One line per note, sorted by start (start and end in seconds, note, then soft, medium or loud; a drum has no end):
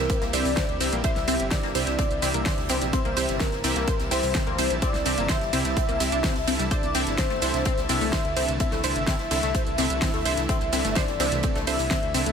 0.00 0.31 C3 loud
0.00 6.67 C3 medium
0.00 6.67 E3 medium
0.00 6.67 G3 medium
0.00 0.31 C4 medium
0.00 0.31 E4 medium
0.00 12.32 E4 medium
0.00 0.31 G4 medium
0.00 2.89 G4 medium
0.00 0.24 A#4 loud
0.00 0.31 E5 loud
0.00 12.32 E5 medium
0.00 12.32 E6 medium
0.10 0.17 C4 medium
0.10 kick loud
0.10 closed hi-hat soft
0.10 closed hi-hat medium
0.10 ride medium
0.10 shaker soft
0.22 0.31 C2 medium
0.22 0.32 A#3 medium
0.22 snare soft
0.22 closed hi-hat soft
0.22 shaker soft
0.33 0.43 C2 loud
0.33 0.48 C3 medium
0.33 0.48 C4 medium
0.33 0.48 E4 medium
0.33 0.48 G4 medium
0.33 0.40 C5 medium
0.33 0.95 D5 loud
0.33 0.48 E5 loud
0.33 closed hi-hat medium
0.33 open hi-hat loud
0.33 ride medium
0.33 shaker medium
0.45 0.55 C2 medium
0.45 closed hi-hat soft
0.45 open hi-hat medium
0.45 shaker soft
0.57 0.64 C4 loud
0.57 kick loud
0.57 snare loud
0.57 closed hi-hat medium
0.57 ride medium
0.57 shaker soft
0.69 0.79 D2 medium
0.69 closed hi-hat soft
0.80 0.91 C2 medium
0.80 1.25 C3 medium
0.80 0.88 C4 medium
0.80 1.25 C4 medium
0.80 1.25 E4 medium
0.80 1.25 G4 medium
0.80 1.25 E5 loud
0.80 closed hi-hat medium
0.80 open hi-hat loud
0.80 ride medium
0.80 shaker medium
0.92 1.02 A#1 medium
0.92 1.03 A#3 medium
0.92 closed hi-hat medium
0.92 shaker soft
1.04 1.11 C5 medium
1.04 1.47 E5 loud
1.04 kick loud
1.04 closed hi-hat loud
1.04 closed hi-hat soft
1.04 ride medium
1.04 shaker soft
1.16 1.26 C2 medium
1.16 snare soft
1.16 closed hi-hat soft
1.16 shaker soft
1.28 1.38 C2 loud
1.28 1.72 C3 medium
1.28 1.35 C4 loud
1.28 1.72 C4 medium
1.28 1.72 E4 medium
1.28 1.72 G4 medium
1.28 1.72 E5 loud
1.28 closed hi-hat medium
1.28 open hi-hat loud
1.28 ride medium
1.28 shaker medium
1.40 1.50 G1 medium
1.40 closed hi-hat medium
1.40 shaker soft
1.51 1.58 C4 medium
1.51 2.84 D5 loud
1.51 kick loud
1.51 snare loud
1.51 closed hi-hat medium
1.51 ride medium
1.51 shaker soft
1.63 1.73 G1 medium
1.63 1.74 A#3 medium
1.63 snare soft
1.63 closed hi-hat soft
1.75 1.85 C2 loud
1.75 2.19 C3 loud
1.75 2.20 C4 medium
1.75 2.20 E4 medium
1.75 2.19 G4 loud
1.75 1.82 C5 medium
1.75 2.20 E5 loud
1.75 closed hi-hat medium
1.75 open hi-hat loud
1.75 ride medium
1.75 shaker medium
1.87 1.97 C2 loud
1.87 snare soft
1.87 closed hi-hat medium
1.87 shaker soft
1.99 2.06 C4 medium
1.99 kick loud
1.99 closed hi-hat medium
1.99 ride medium
1.99 shaker soft
2.11 2.20 C2 medium
2.11 closed hi-hat soft
2.11 shaker soft
2.22 2.32 C2 loud
2.22 2.37 C3 medium
2.22 2.37 C4 medium
2.22 2.29 C4 medium
2.22 2.37 E4 medium
2.22 2.37 G4 medium
2.22 2.37 E5 loud
2.22 closed hi-hat medium
2.22 open hi-hat loud
2.22 ride medium
2.22 shaker medium
2.34 2.44 C2 medium
2.34 2.44 A#3 medium
2.34 closed hi-hat medium
2.34 shaker soft
2.45 2.53 C5 medium
2.45 kick loud
2.45 snare loud
2.45 closed hi-hat medium
2.45 open hi-hat medium
2.45 ride medium
2.45 shaker soft
2.58 2.68 D2 medium
2.58 snare soft
2.58 closed hi-hat soft
2.69 2.80 C2 loud
2.69 3.14 C3 medium
2.69 3.14 C4 medium
2.69 2.77 C4 loud
2.69 3.14 E4 medium
2.69 3.14 G4 medium
2.69 3.14 E5 loud
2.69 closed hi-hat medium
2.69 open hi-hat loud
2.69 ride medium
2.69 shaker medium
2.80 2.91 A#1 medium
2.80 snare medium
2.80 closed hi-hat medium
2.80 shaker soft
2.93 3.00 C4 medium
2.93 3.36 C5 loud
2.93 12.32 A5 medium
2.93 kick loud
2.93 closed hi-hat loud
2.93 closed hi-hat medium
2.93 ride medium
2.93 shaker soft
3.05 3.15 C2 medium
3.05 3.15 A#3 medium
3.05 closed hi-hat soft
3.05 shaker soft
3.17 3.27 C2 loud
3.17 3.61 C3 medium
3.17 3.61 C4 medium
3.17 3.61 E4 medium
3.17 3.61 G4 medium
3.17 3.24 C5 medium
3.17 3.61 E5 loud
3.17 closed hi-hat medium
3.17 open hi-hat loud
3.17 ride medium
3.17 shaker medium
3.28 3.39 G1 medium
3.28 snare soft
3.28 closed hi-hat soft
3.28 shaker soft
3.40 3.47 C4 loud
3.40 4.13 A#4 loud
3.40 kick loud
3.40 snare loud
3.40 closed hi-hat soft
3.40 closed hi-hat medium
3.40 ride medium
3.40 shaker soft
3.52 3.62 G1 medium
3.52 snare soft
3.52 closed hi-hat soft
3.64 3.74 C2 medium
3.64 4.08 C3 loud
3.64 4.08 C4 medium
3.64 3.71 C4 medium
3.64 4.08 E4 medium
3.64 4.08 G4 medium
3.64 4.08 E5 loud
3.64 closed hi-hat medium
3.64 open hi-hat loud
3.64 ride medium
3.64 shaker medium
3.75 3.86 C2 medium
3.75 3.86 A#3 medium
3.75 snare soft
3.75 closed hi-hat soft
3.75 shaker soft
3.87 3.95 C5 medium
3.87 kick loud
3.87 closed hi-hat medium
3.87 closed hi-hat soft
3.87 ride medium
3.87 shaker soft
3.99 4.09 C2 medium
3.99 snare soft
3.99 closed hi-hat soft
3.99 shaker soft
4.11 4.21 C2 loud
4.11 4.26 C3 medium
4.11 4.18 C4 loud
4.11 4.26 C4 medium
4.11 4.26 E4 medium
4.11 4.26 G4 medium
4.11 4.73 C5 loud
4.11 4.26 E5 loud
4.11 closed hi-hat medium
4.11 open hi-hat loud
4.11 ride medium
4.11 shaker medium
4.23 4.33 C2 medium
4.23 closed hi-hat soft
4.23 open hi-hat medium
4.23 shaker soft
4.34 4.42 C4 medium
4.34 kick loud
4.34 snare loud
4.34 closed hi-hat medium
4.34 ride medium
4.34 shaker soft
4.47 4.57 D2 medium
4.47 4.57 A#3 medium
4.47 closed hi-hat soft
4.58 4.69 C2 medium
4.58 5.03 C3 medium
4.58 5.03 C4 medium
4.58 5.03 E4 medium
4.58 5.03 G4 medium
4.58 4.65 C5 medium
4.58 5.03 E5 medium
4.58 closed hi-hat medium
4.58 open hi-hat loud
4.58 ride medium
4.58 shaker medium
4.70 4.80 A#1 loud
4.70 closed hi-hat medium
4.70 shaker soft
4.82 4.89 C4 loud
4.82 5.31 D5 loud
4.82 kick loud
4.82 closed hi-hat medium
4.82 closed hi-hat soft
4.82 ride medium
4.82 shaker soft
4.94 5.04 C2 medium
4.94 snare soft
4.94 closed hi-hat soft
4.94 shaker soft
5.05 5.16 C2 loud
5.05 5.50 C3 medium
5.05 5.13 C4 medium
5.05 5.50 C4 medium
5.05 5.50 E4 medium
5.05 5.50 G4 medium
5.05 5.50 E5 loud
5.05 closed hi-hat medium
5.05 open hi-hat loud
5.05 ride medium
5.05 shaker medium
5.18 5.28 G1 medium
5.18 5.28 A#3 medium
5.18 closed hi-hat soft
5.18 shaker soft
5.29 5.36 C5 medium
5.29 6.62 E5 loud
5.29 kick loud
5.29 snare loud
5.29 closed hi-hat medium
5.29 closed hi-hat loud
5.29 ride medium
5.29 shaker soft
5.41 5.51 G1 medium
5.41 snare medium
5.41 closed hi-hat soft
5.53 5.63 C2 medium
5.53 5.97 C3 loud
5.53 5.60 C4 loud
5.53 5.97 C4 medium
5.53 5.97 E4 medium
5.53 5.97 G4 medium
5.53 5.97 E5 loud
5.53 closed hi-hat medium
5.53 open hi-hat loud
5.53 ride medium
5.53 shaker medium
5.65 5.75 C2 loud
5.65 snare soft
5.65 closed hi-hat soft
5.65 shaker soft
5.77 5.84 C4 medium
5.77 kick loud
5.77 closed hi-hat soft
5.77 closed hi-hat medium
5.77 ride medium
5.77 shaker soft
5.89 5.98 C2 medium
5.89 5.99 A#3 medium
5.89 closed hi-hat soft
5.89 shaker soft
6.00 6.10 C2 loud
6.00 6.15 C3 medium
6.00 6.15 C4 medium
6.00 6.15 E4 medium
6.00 6.15 G4 medium
6.00 6.15 E5 loud
6.00 closed hi-hat medium
6.00 open hi-hat loud
6.00 ride medium
6.00 shaker medium
6.12 6.22 C2 loud
6.12 6.19 D4 medium
6.12 closed hi-hat medium
6.12 shaker soft
6.24 6.34 C4 loud
6.24 kick loud
6.24 snare loud
6.24 closed hi-hat medium
6.24 open hi-hat medium
6.24 ride medium
6.24 shaker soft
6.36 6.46 C2 medium
6.36 snare soft
6.36 closed hi-hat soft
6.47 6.58 C2 loud
6.47 6.92 C3 medium
6.47 6.52 C4 medium
6.47 6.92 D4 medium
6.47 6.92 E4 medium
6.47 6.92 A4 medium
6.47 6.92 E5 loud
6.47 closed hi-hat medium
6.47 open hi-hat loud
6.47 ride medium
6.47 shaker medium
6.59 6.69 C2 medium
6.59 6.66 G3 medium
6.59 snare soft
6.59 closed hi-hat medium
6.59 shaker soft
6.71 12.32 D3 medium
6.71 12.32 E3 medium
6.71 12.32 A3 medium
6.71 6.78 C5 medium
6.71 7.14 D5 loud
6.71 kick loud
6.71 closed hi-hat soft
6.71 closed hi-hat medium
6.71 ride medium
6.71 shaker soft
6.83 6.93 C2 medium
6.83 closed hi-hat soft
6.83 shaker soft
6.94 7.05 C2 loud
6.94 7.39 C3 medium
6.94 7.02 C4 loud
6.94 7.39 D4 medium
6.94 7.39 E4 medium
6.94 7.39 A4 medium
6.94 7.39 E5 loud
6.94 closed hi-hat medium
6.94 open hi-hat loud
6.94 ride medium
6.94 shaker medium
7.06 7.17 G1 loud
7.06 snare soft
7.06 closed hi-hat soft
7.06 shaker soft
7.18 7.25 C4 medium
7.18 7.80 C5 loud
7.18 kick loud
7.18 snare loud
7.18 closed hi-hat loud
7.18 closed hi-hat medium
7.18 ride medium
7.18 shaker soft
7.30 7.40 G1 medium
7.30 7.41 A3 medium
7.30 snare soft
7.30 closed hi-hat soft
7.42 7.52 C2 loud
7.42 7.86 C3 loud
7.42 7.86 D4 medium
7.42 7.86 E4 medium
7.42 7.86 A4 medium
7.42 7.49 C5 medium
7.42 7.86 E5 loud
7.42 closed hi-hat medium
7.42 open hi-hat loud
7.42 ride medium
7.42 shaker medium
7.54 7.64 C2 medium
7.54 snare medium
7.54 closed hi-hat medium
7.54 shaker soft
7.65 7.73 C4 loud
7.65 kick loud
7.65 closed hi-hat medium
7.65 closed hi-hat soft
7.65 ride medium
7.65 shaker soft
7.78 7.87 C2 medium
7.78 snare soft
7.78 closed hi-hat soft
7.78 shaker soft
7.89 7.99 C2 loud
7.89 8.04 C3 loud
7.89 7.96 C4 medium
7.89 8.04 D4 medium
7.89 8.04 E4 medium
7.89 8.04 A4 medium
7.89 8.04 E5 loud
7.89 8.51 E5 loud
7.89 closed hi-hat medium
7.89 open hi-hat loud
7.89 ride medium
7.89 shaker medium
8.00 8.11 C2 medium
8.00 8.11 A3 medium
8.00 closed hi-hat soft
8.00 open hi-hat medium
8.00 shaker soft
8.13 8.20 C5 medium
8.13 kick loud
8.13 snare loud
8.13 closed hi-hat medium
8.13 ride medium
8.13 shaker soft
8.25 8.35 D2 medium
8.25 closed hi-hat soft
8.36 8.47 C2 loud
8.36 8.81 C3 medium
8.36 8.44 C4 loud
8.36 8.81 D4 medium
8.36 8.81 E4 medium
8.36 8.81 A4 medium
8.36 8.81 E5 medium
8.36 closed hi-hat medium
8.36 open hi-hat loud
8.36 ride medium
8.36 shaker medium
8.48 8.58 C2 loud
8.48 closed hi-hat medium
8.48 shaker soft
8.60 8.67 C4 medium
8.60 9.03 E5 loud
8.60 kick loud
8.60 closed hi-hat loud
8.60 closed hi-hat medium
8.60 ride medium
8.60 shaker soft
8.72 8.82 C2 medium
8.72 8.82 A3 medium
8.72 snare medium
8.72 snare soft
8.72 closed hi-hat soft
8.72 shaker soft
8.84 8.94 C2 medium
8.84 9.28 C3 medium
8.84 9.28 D4 medium
8.84 9.28 E4 medium
8.84 9.28 A4 medium
8.84 8.91 C5 medium
8.84 9.28 E5 loud
8.84 closed hi-hat medium
8.84 open hi-hat loud
8.84 ride medium
8.84 shaker medium
8.96 9.06 G1 medium
8.96 closed hi-hat medium
8.96 shaker soft
9.07 9.14 C4 loud
9.07 10.40 E5 loud
9.07 kick loud
9.07 snare loud
9.07 closed hi-hat medium
9.07 closed hi-hat loud
9.07 ride medium
9.07 shaker soft
9.19 9.29 G1 medium
9.19 snare medium
9.19 closed hi-hat soft
9.31 9.41 C2 medium
9.31 9.75 C3 loud
9.31 9.38 C4 medium
9.31 9.75 D4 medium
9.31 9.75 E4 medium
9.31 9.75 A4 medium
9.31 9.75 E5 loud
9.31 closed hi-hat medium
9.31 open hi-hat loud
9.31 ride medium
9.31 shaker medium
9.43 9.53 C2 loud
9.43 9.53 A3 medium
9.43 snare soft
9.43 closed hi-hat medium
9.43 shaker soft
9.55 9.62 C5 medium
9.55 kick loud
9.55 closed hi-hat medium
9.55 ride medium
9.55 shaker soft
9.67 9.76 C2 medium
9.67 closed hi-hat soft
9.67 shaker soft
9.78 9.88 C2 loud
9.78 9.93 C3 medium
9.78 9.85 C4 loud
9.78 9.93 D4 medium
9.78 9.93 E4 medium
9.78 9.93 A4 medium
9.78 9.93 E5 loud
9.78 closed hi-hat medium
9.78 open hi-hat loud
9.78 ride medium
9.78 shaker medium
9.90 10.00 C2 loud
9.90 closed hi-hat medium
9.90 shaker soft
10.02 10.09 C4 medium
10.02 kick loud
10.02 snare loud
10.02 closed hi-hat medium
10.02 open hi-hat medium
10.02 ride medium
10.02 shaker soft
10.14 10.24 D2 medium
10.14 10.24 A3 medium
10.14 snare soft
10.14 closed hi-hat soft
10.25 10.36 C2 loud
10.25 10.70 C3 medium
10.25 10.70 D4 medium
10.25 10.70 E4 medium
10.25 10.70 A4 medium
10.25 10.32 C5 medium
10.25 10.70 E5 medium
10.25 closed hi-hat medium
10.25 open hi-hat loud
10.25 ride medium
10.25 shaker medium
10.37 10.47 C2 medium
10.37 snare soft
10.37 closed hi-hat medium
10.37 shaker soft
10.49 10.56 C4 loud
10.49 10.98 E5 loud
10.49 kick loud
10.49 closed hi-hat medium
10.49 closed hi-hat loud
10.49 ride medium
10.49 shaker soft
10.61 10.71 C2 medium
10.61 closed hi-hat soft
10.61 shaker soft
10.73 10.83 C2 loud
10.73 11.17 C3 medium
10.73 10.80 C4 medium
10.73 11.17 D4 medium
10.73 11.17 E4 medium
10.73 11.17 A4 medium
10.73 11.17 E5 loud
10.73 closed hi-hat medium
10.73 open hi-hat loud
10.73 ride medium
10.73 shaker medium
10.85 10.94 G1 medium
10.85 10.95 A3 medium
10.85 snare soft
10.85 closed hi-hat medium
10.85 shaker soft
10.95 11.03 C5 medium
10.95 11.58 D5 loud
10.95 kick loud
10.95 snare loud
10.95 closed hi-hat medium
10.95 ride medium
10.95 shaker soft
11.08 11.18 G1 medium
11.08 snare medium
11.08 closed hi-hat soft
11.20 11.30 C2 loud
11.20 11.64 C3 loud
11.20 11.27 C4 loud
11.20 11.64 D4 medium
11.20 11.64 E4 medium
11.20 11.64 A4 medium
11.20 11.64 E5 loud
11.20 snare loud
11.20 closed hi-hat medium
11.20 open hi-hat loud
11.20 ride medium
11.20 shaker medium
11.32 11.42 C2 medium
11.32 snare medium
11.32 closed hi-hat medium
11.32 shaker soft
11.43 11.51 C4 medium
11.43 kick loud
11.43 closed hi-hat medium
11.43 ride medium
11.43 shaker soft
11.55 11.65 C2 medium
11.55 11.66 A3 medium
11.55 snare soft
11.55 closed hi-hat soft
11.55 shaker soft
11.67 11.77 C2 loud
11.67 11.82 C3 medium
11.67 11.82 D4 medium
11.67 11.82 E4 medium
11.67 11.82 A4 medium
11.67 11.74 C5 medium
11.67 12.29 E5 loud
11.67 11.82 E5 loud
11.67 closed hi-hat medium
11.67 open hi-hat loud
11.67 ride medium
11.67 shaker medium
11.79 11.89 C2 medium
11.79 closed hi-hat soft
11.79 open hi-hat medium
11.79 shaker soft
11.91 11.98 C4 loud
11.91 kick loud
11.91 snare loud
11.91 closed hi-hat medium
11.91 ride medium
11.91 shaker medium
12.03 12.13 D2 medium
12.03 closed hi-hat soft
12.14 12.24 C2 loud
12.14 12.32 C3 medium
12.14 12.21 C4 medium
12.14 12.32 D4 medium
12.14 12.32 E4 medium
12.14 12.32 A4 medium
12.14 12.32 E5 loud
12.14 closed hi-hat medium
12.14 open hi-hat loud
12.14 ride medium
12.14 shaker medium
12.26 12.32 C2 medium
12.26 12.32 A3 medium
12.26 closed hi-hat medium
12.26 shaker soft